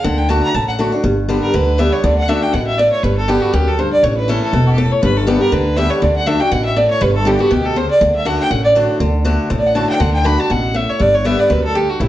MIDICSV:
0, 0, Header, 1, 5, 480
1, 0, Start_track
1, 0, Key_signature, 2, "major"
1, 0, Tempo, 249066
1, 83, Time_signature, 4, 2, 24, 8
1, 23286, End_track
2, 0, Start_track
2, 0, Title_t, "Fiddle"
2, 0, Program_c, 0, 110
2, 71, Note_on_c, 0, 78, 82
2, 339, Note_on_c, 0, 79, 87
2, 368, Note_off_c, 0, 78, 0
2, 560, Note_on_c, 0, 81, 85
2, 589, Note_off_c, 0, 79, 0
2, 809, Note_off_c, 0, 81, 0
2, 820, Note_on_c, 0, 82, 114
2, 1041, Note_on_c, 0, 81, 93
2, 1070, Note_off_c, 0, 82, 0
2, 1297, Note_off_c, 0, 81, 0
2, 1309, Note_on_c, 0, 78, 101
2, 1438, Note_off_c, 0, 78, 0
2, 2752, Note_on_c, 0, 70, 81
2, 2970, Note_on_c, 0, 71, 85
2, 2999, Note_off_c, 0, 70, 0
2, 3448, Note_on_c, 0, 76, 98
2, 3476, Note_off_c, 0, 71, 0
2, 3709, Note_on_c, 0, 73, 85
2, 3737, Note_off_c, 0, 76, 0
2, 3925, Note_on_c, 0, 74, 76
2, 3954, Note_off_c, 0, 73, 0
2, 4171, Note_off_c, 0, 74, 0
2, 4182, Note_on_c, 0, 78, 100
2, 4404, Note_on_c, 0, 76, 89
2, 4433, Note_off_c, 0, 78, 0
2, 4672, Note_on_c, 0, 79, 101
2, 4701, Note_off_c, 0, 76, 0
2, 4870, Note_on_c, 0, 78, 90
2, 4899, Note_off_c, 0, 79, 0
2, 5124, Note_off_c, 0, 78, 0
2, 5136, Note_on_c, 0, 76, 99
2, 5358, Note_on_c, 0, 74, 101
2, 5387, Note_off_c, 0, 76, 0
2, 5614, Note_off_c, 0, 74, 0
2, 5626, Note_on_c, 0, 73, 94
2, 5842, Note_on_c, 0, 71, 83
2, 5871, Note_off_c, 0, 73, 0
2, 6096, Note_off_c, 0, 71, 0
2, 6107, Note_on_c, 0, 69, 94
2, 6324, Note_on_c, 0, 67, 82
2, 6353, Note_off_c, 0, 69, 0
2, 6584, Note_on_c, 0, 66, 82
2, 6613, Note_off_c, 0, 67, 0
2, 6800, Note_on_c, 0, 67, 84
2, 6829, Note_off_c, 0, 66, 0
2, 7081, Note_on_c, 0, 69, 91
2, 7110, Note_off_c, 0, 67, 0
2, 7305, Note_on_c, 0, 72, 90
2, 7334, Note_off_c, 0, 69, 0
2, 7551, Note_off_c, 0, 72, 0
2, 7562, Note_on_c, 0, 74, 98
2, 7776, Note_on_c, 0, 73, 78
2, 7805, Note_off_c, 0, 74, 0
2, 8025, Note_off_c, 0, 73, 0
2, 8036, Note_on_c, 0, 71, 79
2, 8266, Note_on_c, 0, 69, 81
2, 8295, Note_off_c, 0, 71, 0
2, 8516, Note_off_c, 0, 69, 0
2, 8525, Note_on_c, 0, 69, 77
2, 9162, Note_off_c, 0, 69, 0
2, 10426, Note_on_c, 0, 70, 93
2, 10651, Note_on_c, 0, 71, 88
2, 10680, Note_off_c, 0, 70, 0
2, 11111, Note_on_c, 0, 76, 113
2, 11140, Note_off_c, 0, 71, 0
2, 11373, Note_on_c, 0, 73, 97
2, 11402, Note_off_c, 0, 76, 0
2, 11592, Note_on_c, 0, 74, 81
2, 11620, Note_off_c, 0, 73, 0
2, 11852, Note_off_c, 0, 74, 0
2, 11864, Note_on_c, 0, 78, 108
2, 12075, Note_on_c, 0, 76, 85
2, 12104, Note_off_c, 0, 78, 0
2, 12333, Note_on_c, 0, 79, 113
2, 12361, Note_off_c, 0, 76, 0
2, 12553, Note_on_c, 0, 78, 97
2, 12582, Note_off_c, 0, 79, 0
2, 12804, Note_off_c, 0, 78, 0
2, 12815, Note_on_c, 0, 76, 94
2, 13039, Note_on_c, 0, 74, 94
2, 13068, Note_off_c, 0, 76, 0
2, 13288, Note_off_c, 0, 74, 0
2, 13300, Note_on_c, 0, 73, 108
2, 13521, Note_on_c, 0, 71, 90
2, 13550, Note_off_c, 0, 73, 0
2, 13769, Note_off_c, 0, 71, 0
2, 13781, Note_on_c, 0, 69, 95
2, 14005, Note_on_c, 0, 67, 82
2, 14034, Note_off_c, 0, 69, 0
2, 14268, Note_on_c, 0, 66, 85
2, 14297, Note_off_c, 0, 67, 0
2, 14493, Note_on_c, 0, 67, 87
2, 14521, Note_off_c, 0, 66, 0
2, 14746, Note_on_c, 0, 69, 100
2, 14775, Note_off_c, 0, 67, 0
2, 14972, Note_on_c, 0, 72, 94
2, 15001, Note_off_c, 0, 69, 0
2, 15221, Note_off_c, 0, 72, 0
2, 15233, Note_on_c, 0, 74, 102
2, 15439, Note_off_c, 0, 74, 0
2, 15439, Note_on_c, 0, 74, 84
2, 15695, Note_off_c, 0, 74, 0
2, 15707, Note_on_c, 0, 76, 99
2, 15916, Note_on_c, 0, 78, 89
2, 15944, Note_off_c, 0, 76, 0
2, 16169, Note_off_c, 0, 78, 0
2, 16180, Note_on_c, 0, 79, 114
2, 16391, Note_on_c, 0, 78, 86
2, 16420, Note_off_c, 0, 79, 0
2, 16639, Note_off_c, 0, 78, 0
2, 16651, Note_on_c, 0, 74, 114
2, 16783, Note_off_c, 0, 74, 0
2, 18465, Note_on_c, 0, 74, 79
2, 18630, Note_on_c, 0, 78, 94
2, 18659, Note_off_c, 0, 74, 0
2, 18790, Note_on_c, 0, 81, 105
2, 18819, Note_off_c, 0, 78, 0
2, 19057, Note_off_c, 0, 81, 0
2, 19068, Note_on_c, 0, 79, 90
2, 19275, Note_on_c, 0, 78, 88
2, 19303, Note_off_c, 0, 79, 0
2, 19526, Note_off_c, 0, 78, 0
2, 19538, Note_on_c, 0, 79, 97
2, 19762, Note_on_c, 0, 83, 108
2, 19791, Note_off_c, 0, 79, 0
2, 20036, Note_on_c, 0, 81, 99
2, 20064, Note_off_c, 0, 83, 0
2, 20251, Note_on_c, 0, 78, 87
2, 20280, Note_off_c, 0, 81, 0
2, 20725, Note_on_c, 0, 76, 91
2, 20754, Note_off_c, 0, 78, 0
2, 20994, Note_on_c, 0, 73, 91
2, 21023, Note_off_c, 0, 76, 0
2, 21220, Note_on_c, 0, 74, 98
2, 21249, Note_off_c, 0, 73, 0
2, 21479, Note_on_c, 0, 73, 92
2, 21508, Note_off_c, 0, 74, 0
2, 21690, Note_on_c, 0, 76, 105
2, 21719, Note_off_c, 0, 73, 0
2, 21954, Note_on_c, 0, 74, 93
2, 21983, Note_off_c, 0, 76, 0
2, 22170, Note_on_c, 0, 71, 82
2, 22199, Note_off_c, 0, 74, 0
2, 22421, Note_off_c, 0, 71, 0
2, 22432, Note_on_c, 0, 69, 103
2, 22649, Note_on_c, 0, 67, 89
2, 22678, Note_off_c, 0, 69, 0
2, 22922, Note_on_c, 0, 66, 82
2, 22950, Note_off_c, 0, 67, 0
2, 23134, Note_on_c, 0, 64, 65
2, 23162, Note_off_c, 0, 66, 0
2, 23286, Note_off_c, 0, 64, 0
2, 23286, End_track
3, 0, Start_track
3, 0, Title_t, "Fiddle"
3, 0, Program_c, 1, 110
3, 8984, Note_on_c, 1, 66, 89
3, 9084, Note_off_c, 1, 66, 0
3, 9097, Note_on_c, 1, 67, 83
3, 9208, Note_on_c, 1, 69, 96
3, 9237, Note_off_c, 1, 67, 0
3, 9476, Note_on_c, 1, 73, 99
3, 9505, Note_off_c, 1, 69, 0
3, 9679, Note_off_c, 1, 73, 0
3, 9691, Note_on_c, 1, 71, 93
3, 9962, Note_on_c, 1, 69, 90
3, 9991, Note_off_c, 1, 71, 0
3, 10299, Note_off_c, 1, 69, 0
3, 23286, End_track
4, 0, Start_track
4, 0, Title_t, "Steel-string acoustic guitar"
4, 0, Program_c, 2, 25
4, 84, Note_on_c, 2, 50, 95
4, 529, Note_off_c, 2, 50, 0
4, 552, Note_on_c, 2, 50, 83
4, 561, Note_on_c, 2, 57, 90
4, 571, Note_on_c, 2, 62, 82
4, 580, Note_on_c, 2, 66, 103
4, 1016, Note_off_c, 2, 50, 0
4, 1021, Note_off_c, 2, 57, 0
4, 1026, Note_off_c, 2, 62, 0
4, 1030, Note_off_c, 2, 66, 0
4, 1048, Note_on_c, 2, 45, 82
4, 1515, Note_on_c, 2, 50, 81
4, 1523, Note_on_c, 2, 57, 84
4, 1537, Note_on_c, 2, 62, 75
4, 1543, Note_on_c, 2, 66, 84
4, 1754, Note_off_c, 2, 66, 0
4, 1773, Note_off_c, 2, 50, 0
4, 1777, Note_off_c, 2, 57, 0
4, 1777, Note_on_c, 2, 66, 60
4, 1784, Note_off_c, 2, 62, 0
4, 1803, Note_on_c, 2, 62, 46
4, 1963, Note_off_c, 2, 45, 0
4, 1990, Note_off_c, 2, 66, 0
4, 1997, Note_on_c, 2, 43, 93
4, 2003, Note_off_c, 2, 62, 0
4, 2476, Note_on_c, 2, 50, 82
4, 2486, Note_on_c, 2, 55, 84
4, 2492, Note_on_c, 2, 59, 89
4, 2506, Note_on_c, 2, 67, 85
4, 2917, Note_off_c, 2, 43, 0
4, 2938, Note_off_c, 2, 50, 0
4, 2943, Note_off_c, 2, 55, 0
4, 2946, Note_off_c, 2, 59, 0
4, 2953, Note_off_c, 2, 67, 0
4, 2962, Note_on_c, 2, 50, 89
4, 3408, Note_off_c, 2, 50, 0
4, 3431, Note_on_c, 2, 50, 81
4, 3447, Note_on_c, 2, 55, 75
4, 3454, Note_on_c, 2, 59, 88
4, 3462, Note_on_c, 2, 67, 91
4, 3895, Note_off_c, 2, 50, 0
4, 3903, Note_off_c, 2, 55, 0
4, 3907, Note_off_c, 2, 59, 0
4, 3911, Note_off_c, 2, 67, 0
4, 3925, Note_on_c, 2, 50, 89
4, 4369, Note_off_c, 2, 50, 0
4, 4392, Note_on_c, 2, 50, 79
4, 4406, Note_on_c, 2, 57, 97
4, 4413, Note_on_c, 2, 62, 90
4, 4420, Note_on_c, 2, 66, 97
4, 4856, Note_off_c, 2, 50, 0
4, 4863, Note_off_c, 2, 57, 0
4, 4866, Note_off_c, 2, 62, 0
4, 4869, Note_off_c, 2, 66, 0
4, 4887, Note_on_c, 2, 47, 92
4, 5343, Note_off_c, 2, 47, 0
4, 5380, Note_on_c, 2, 45, 90
4, 5829, Note_off_c, 2, 45, 0
4, 5858, Note_on_c, 2, 43, 89
4, 6320, Note_on_c, 2, 50, 84
4, 6329, Note_on_c, 2, 55, 83
4, 6341, Note_on_c, 2, 59, 89
4, 6348, Note_on_c, 2, 67, 92
4, 6766, Note_off_c, 2, 43, 0
4, 6779, Note_off_c, 2, 50, 0
4, 6783, Note_off_c, 2, 55, 0
4, 6789, Note_off_c, 2, 59, 0
4, 6793, Note_off_c, 2, 67, 0
4, 6812, Note_on_c, 2, 42, 97
4, 7264, Note_off_c, 2, 42, 0
4, 7298, Note_on_c, 2, 43, 76
4, 7747, Note_off_c, 2, 43, 0
4, 7780, Note_on_c, 2, 45, 98
4, 8247, Note_on_c, 2, 52, 77
4, 8262, Note_on_c, 2, 57, 89
4, 8267, Note_on_c, 2, 61, 90
4, 8276, Note_on_c, 2, 64, 101
4, 8686, Note_off_c, 2, 45, 0
4, 8701, Note_off_c, 2, 52, 0
4, 8708, Note_off_c, 2, 57, 0
4, 8711, Note_off_c, 2, 61, 0
4, 8716, Note_off_c, 2, 64, 0
4, 8735, Note_on_c, 2, 47, 89
4, 9185, Note_off_c, 2, 47, 0
4, 9211, Note_on_c, 2, 45, 87
4, 9663, Note_off_c, 2, 45, 0
4, 9687, Note_on_c, 2, 43, 90
4, 10151, Note_on_c, 2, 50, 76
4, 10160, Note_on_c, 2, 55, 96
4, 10169, Note_on_c, 2, 59, 96
4, 10175, Note_on_c, 2, 67, 97
4, 10394, Note_off_c, 2, 67, 0
4, 10407, Note_off_c, 2, 50, 0
4, 10412, Note_off_c, 2, 55, 0
4, 10416, Note_off_c, 2, 59, 0
4, 10417, Note_on_c, 2, 67, 58
4, 10444, Note_on_c, 2, 59, 51
4, 10598, Note_off_c, 2, 43, 0
4, 10626, Note_off_c, 2, 67, 0
4, 10638, Note_on_c, 2, 50, 94
4, 10640, Note_off_c, 2, 59, 0
4, 11091, Note_off_c, 2, 50, 0
4, 11115, Note_on_c, 2, 50, 76
4, 11129, Note_on_c, 2, 55, 88
4, 11140, Note_on_c, 2, 59, 92
4, 11146, Note_on_c, 2, 67, 84
4, 11573, Note_off_c, 2, 50, 0
4, 11580, Note_off_c, 2, 55, 0
4, 11586, Note_off_c, 2, 59, 0
4, 11589, Note_off_c, 2, 67, 0
4, 11600, Note_on_c, 2, 50, 91
4, 12045, Note_off_c, 2, 50, 0
4, 12068, Note_on_c, 2, 50, 86
4, 12078, Note_on_c, 2, 57, 84
4, 12087, Note_on_c, 2, 62, 94
4, 12099, Note_on_c, 2, 66, 93
4, 12318, Note_off_c, 2, 66, 0
4, 12325, Note_off_c, 2, 50, 0
4, 12329, Note_off_c, 2, 57, 0
4, 12334, Note_off_c, 2, 62, 0
4, 12341, Note_on_c, 2, 66, 66
4, 12367, Note_on_c, 2, 62, 51
4, 12548, Note_off_c, 2, 66, 0
4, 12558, Note_on_c, 2, 47, 94
4, 12560, Note_off_c, 2, 62, 0
4, 13014, Note_off_c, 2, 47, 0
4, 13035, Note_on_c, 2, 45, 81
4, 13493, Note_off_c, 2, 45, 0
4, 13505, Note_on_c, 2, 43, 101
4, 13975, Note_on_c, 2, 50, 88
4, 13992, Note_on_c, 2, 55, 92
4, 14002, Note_on_c, 2, 59, 90
4, 14011, Note_on_c, 2, 67, 95
4, 14218, Note_off_c, 2, 67, 0
4, 14237, Note_off_c, 2, 50, 0
4, 14241, Note_on_c, 2, 67, 60
4, 14242, Note_off_c, 2, 59, 0
4, 14246, Note_off_c, 2, 55, 0
4, 14266, Note_on_c, 2, 59, 51
4, 14426, Note_off_c, 2, 43, 0
4, 14457, Note_off_c, 2, 67, 0
4, 14466, Note_on_c, 2, 47, 101
4, 14469, Note_off_c, 2, 59, 0
4, 14928, Note_off_c, 2, 47, 0
4, 14958, Note_on_c, 2, 49, 75
4, 15414, Note_off_c, 2, 49, 0
4, 15436, Note_on_c, 2, 50, 91
4, 15879, Note_off_c, 2, 50, 0
4, 15902, Note_on_c, 2, 50, 85
4, 15914, Note_on_c, 2, 57, 91
4, 15923, Note_on_c, 2, 62, 99
4, 15928, Note_on_c, 2, 66, 91
4, 16366, Note_off_c, 2, 50, 0
4, 16372, Note_off_c, 2, 57, 0
4, 16377, Note_off_c, 2, 62, 0
4, 16379, Note_off_c, 2, 66, 0
4, 16397, Note_on_c, 2, 45, 101
4, 16868, Note_on_c, 2, 50, 75
4, 16880, Note_on_c, 2, 57, 86
4, 16887, Note_on_c, 2, 62, 94
4, 16898, Note_on_c, 2, 66, 93
4, 17312, Note_off_c, 2, 45, 0
4, 17329, Note_off_c, 2, 50, 0
4, 17336, Note_off_c, 2, 57, 0
4, 17339, Note_off_c, 2, 62, 0
4, 17344, Note_off_c, 2, 66, 0
4, 17349, Note_on_c, 2, 50, 97
4, 17796, Note_off_c, 2, 50, 0
4, 17819, Note_on_c, 2, 50, 83
4, 17830, Note_on_c, 2, 57, 95
4, 17835, Note_on_c, 2, 62, 97
4, 17845, Note_on_c, 2, 66, 93
4, 18285, Note_off_c, 2, 50, 0
4, 18291, Note_off_c, 2, 57, 0
4, 18293, Note_off_c, 2, 62, 0
4, 18298, Note_off_c, 2, 66, 0
4, 18309, Note_on_c, 2, 45, 89
4, 18788, Note_on_c, 2, 50, 76
4, 18795, Note_on_c, 2, 57, 82
4, 18802, Note_on_c, 2, 62, 88
4, 18814, Note_on_c, 2, 66, 88
4, 19229, Note_off_c, 2, 45, 0
4, 19250, Note_off_c, 2, 50, 0
4, 19254, Note_off_c, 2, 57, 0
4, 19257, Note_off_c, 2, 62, 0
4, 19263, Note_off_c, 2, 66, 0
4, 19270, Note_on_c, 2, 50, 97
4, 19717, Note_off_c, 2, 50, 0
4, 19740, Note_on_c, 2, 50, 90
4, 19751, Note_on_c, 2, 57, 93
4, 19760, Note_on_c, 2, 62, 94
4, 19770, Note_on_c, 2, 66, 99
4, 19985, Note_off_c, 2, 66, 0
4, 20001, Note_off_c, 2, 50, 0
4, 20007, Note_off_c, 2, 57, 0
4, 20009, Note_on_c, 2, 66, 59
4, 20011, Note_off_c, 2, 62, 0
4, 20040, Note_on_c, 2, 62, 52
4, 20222, Note_off_c, 2, 66, 0
4, 20231, Note_on_c, 2, 47, 86
4, 20238, Note_off_c, 2, 62, 0
4, 20693, Note_off_c, 2, 47, 0
4, 20705, Note_on_c, 2, 45, 87
4, 21170, Note_off_c, 2, 45, 0
4, 21189, Note_on_c, 2, 43, 88
4, 21671, Note_on_c, 2, 50, 73
4, 21684, Note_on_c, 2, 55, 85
4, 21694, Note_on_c, 2, 59, 94
4, 21702, Note_on_c, 2, 67, 94
4, 22111, Note_off_c, 2, 43, 0
4, 22134, Note_off_c, 2, 50, 0
4, 22140, Note_off_c, 2, 55, 0
4, 22145, Note_off_c, 2, 59, 0
4, 22149, Note_off_c, 2, 67, 0
4, 22159, Note_on_c, 2, 42, 89
4, 22618, Note_off_c, 2, 42, 0
4, 22650, Note_on_c, 2, 43, 86
4, 23103, Note_off_c, 2, 43, 0
4, 23135, Note_on_c, 2, 45, 95
4, 23286, Note_off_c, 2, 45, 0
4, 23286, End_track
5, 0, Start_track
5, 0, Title_t, "Upright bass"
5, 0, Program_c, 3, 32
5, 79, Note_on_c, 3, 38, 98
5, 746, Note_off_c, 3, 38, 0
5, 1042, Note_on_c, 3, 33, 80
5, 1708, Note_off_c, 3, 33, 0
5, 1994, Note_on_c, 3, 31, 93
5, 2663, Note_off_c, 3, 31, 0
5, 2965, Note_on_c, 3, 38, 89
5, 3629, Note_off_c, 3, 38, 0
5, 3924, Note_on_c, 3, 38, 105
5, 4588, Note_off_c, 3, 38, 0
5, 4885, Note_on_c, 3, 33, 86
5, 5549, Note_off_c, 3, 33, 0
5, 5840, Note_on_c, 3, 31, 98
5, 6505, Note_off_c, 3, 31, 0
5, 6804, Note_on_c, 3, 38, 94
5, 7468, Note_off_c, 3, 38, 0
5, 7760, Note_on_c, 3, 33, 99
5, 8424, Note_off_c, 3, 33, 0
5, 8723, Note_on_c, 3, 28, 83
5, 9386, Note_off_c, 3, 28, 0
5, 9686, Note_on_c, 3, 31, 101
5, 10348, Note_off_c, 3, 31, 0
5, 10638, Note_on_c, 3, 38, 90
5, 11302, Note_off_c, 3, 38, 0
5, 11602, Note_on_c, 3, 38, 101
5, 12264, Note_off_c, 3, 38, 0
5, 12551, Note_on_c, 3, 33, 86
5, 13217, Note_off_c, 3, 33, 0
5, 13515, Note_on_c, 3, 31, 107
5, 14180, Note_off_c, 3, 31, 0
5, 14471, Note_on_c, 3, 38, 86
5, 15137, Note_off_c, 3, 38, 0
5, 15435, Note_on_c, 3, 38, 106
5, 16099, Note_off_c, 3, 38, 0
5, 16391, Note_on_c, 3, 33, 89
5, 17057, Note_off_c, 3, 33, 0
5, 17343, Note_on_c, 3, 38, 96
5, 18012, Note_off_c, 3, 38, 0
5, 18305, Note_on_c, 3, 33, 90
5, 18974, Note_off_c, 3, 33, 0
5, 19273, Note_on_c, 3, 38, 100
5, 19940, Note_off_c, 3, 38, 0
5, 20235, Note_on_c, 3, 33, 88
5, 20901, Note_off_c, 3, 33, 0
5, 21199, Note_on_c, 3, 31, 96
5, 21864, Note_off_c, 3, 31, 0
5, 22158, Note_on_c, 3, 38, 93
5, 22824, Note_off_c, 3, 38, 0
5, 23120, Note_on_c, 3, 33, 94
5, 23286, Note_off_c, 3, 33, 0
5, 23286, End_track
0, 0, End_of_file